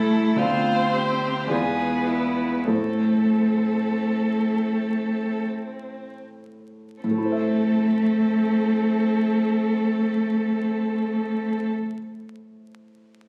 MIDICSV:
0, 0, Header, 1, 5, 480
1, 0, Start_track
1, 0, Key_signature, 0, "minor"
1, 0, Tempo, 1111111
1, 643, Tempo, 1204819
1, 1123, Tempo, 1351351
1, 1124, Time_signature, 3, 2, 24, 8
1, 1603, Tempo, 1425178
1, 2083, Tempo, 1542416
1, 3523, Tempo, 1488834
1, 4550, End_track
2, 0, Start_track
2, 0, Title_t, "Violin"
2, 0, Program_c, 0, 40
2, 0, Note_on_c, 0, 69, 78
2, 164, Note_on_c, 0, 72, 75
2, 170, Note_off_c, 0, 69, 0
2, 646, Note_on_c, 0, 71, 57
2, 652, Note_off_c, 0, 72, 0
2, 1125, Note_off_c, 0, 71, 0
2, 1126, Note_on_c, 0, 69, 49
2, 2072, Note_off_c, 0, 69, 0
2, 2569, Note_on_c, 0, 69, 46
2, 4031, Note_off_c, 0, 69, 0
2, 4550, End_track
3, 0, Start_track
3, 0, Title_t, "Grand piano"
3, 0, Program_c, 1, 0
3, 0, Control_c, 1, 64, 127
3, 0, Note_on_c, 1, 36, 46
3, 0, Note_on_c, 1, 57, 39
3, 0, Note_on_c, 1, 64, 38
3, 0, Note_on_c, 1, 76, 40
3, 145, Note_off_c, 1, 36, 0
3, 147, Note_off_c, 1, 57, 0
3, 148, Note_off_c, 1, 64, 0
3, 150, Note_off_c, 1, 76, 0
3, 155, Note_on_c, 1, 38, 43
3, 158, Note_on_c, 1, 59, 39
3, 160, Note_on_c, 1, 65, 36
3, 160, Note_on_c, 1, 74, 35
3, 168, Control_c, 1, 64, 0
3, 235, Control_c, 1, 64, 127
3, 627, Note_off_c, 1, 38, 0
3, 629, Note_off_c, 1, 59, 0
3, 630, Note_off_c, 1, 65, 0
3, 630, Note_off_c, 1, 74, 0
3, 636, Note_on_c, 1, 40, 48
3, 640, Note_on_c, 1, 56, 36
3, 640, Note_on_c, 1, 65, 38
3, 642, Note_on_c, 1, 74, 40
3, 651, Control_c, 1, 64, 0
3, 746, Control_c, 1, 64, 127
3, 1106, Note_off_c, 1, 40, 0
3, 1108, Note_off_c, 1, 56, 0
3, 1108, Note_off_c, 1, 65, 0
3, 1109, Note_off_c, 1, 74, 0
3, 1116, Note_on_c, 1, 45, 35
3, 1116, Note_on_c, 1, 57, 27
3, 1120, Note_on_c, 1, 72, 26
3, 1121, Note_on_c, 1, 64, 27
3, 1131, Control_c, 1, 64, 0
3, 1221, Control_c, 1, 64, 127
3, 2553, Note_off_c, 1, 45, 0
3, 2553, Note_off_c, 1, 57, 0
3, 2555, Note_off_c, 1, 64, 0
3, 2555, Note_off_c, 1, 72, 0
3, 2572, Note_on_c, 1, 45, 32
3, 2578, Control_c, 1, 64, 0
3, 2593, Note_on_c, 1, 57, 30
3, 2616, Note_on_c, 1, 64, 30
3, 2638, Note_on_c, 1, 72, 29
3, 2659, Note_on_c, 1, 76, 29
3, 2666, Control_c, 1, 64, 127
3, 4034, Note_off_c, 1, 45, 0
3, 4056, Note_off_c, 1, 57, 0
3, 4079, Note_off_c, 1, 64, 0
3, 4102, Note_off_c, 1, 72, 0
3, 4125, Note_off_c, 1, 76, 0
3, 4550, End_track
4, 0, Start_track
4, 0, Title_t, "Violin"
4, 0, Program_c, 2, 40
4, 0, Note_on_c, 2, 64, 70
4, 164, Note_on_c, 2, 65, 61
4, 171, Note_off_c, 2, 64, 0
4, 401, Note_on_c, 2, 67, 55
4, 407, Note_off_c, 2, 65, 0
4, 648, Note_on_c, 2, 68, 55
4, 654, Note_off_c, 2, 67, 0
4, 874, Note_on_c, 2, 64, 47
4, 880, Note_off_c, 2, 68, 0
4, 1117, Note_off_c, 2, 64, 0
4, 1119, Note_on_c, 2, 60, 45
4, 2311, Note_off_c, 2, 60, 0
4, 2568, Note_on_c, 2, 60, 45
4, 4030, Note_off_c, 2, 60, 0
4, 4550, End_track
5, 0, Start_track
5, 0, Title_t, "Cello"
5, 0, Program_c, 3, 42
5, 0, Note_on_c, 3, 57, 72
5, 168, Note_on_c, 3, 60, 63
5, 174, Note_off_c, 3, 57, 0
5, 649, Note_on_c, 3, 59, 48
5, 655, Note_off_c, 3, 60, 0
5, 1123, Note_off_c, 3, 59, 0
5, 1125, Note_on_c, 3, 57, 44
5, 2071, Note_off_c, 3, 57, 0
5, 2570, Note_on_c, 3, 57, 45
5, 4032, Note_off_c, 3, 57, 0
5, 4550, End_track
0, 0, End_of_file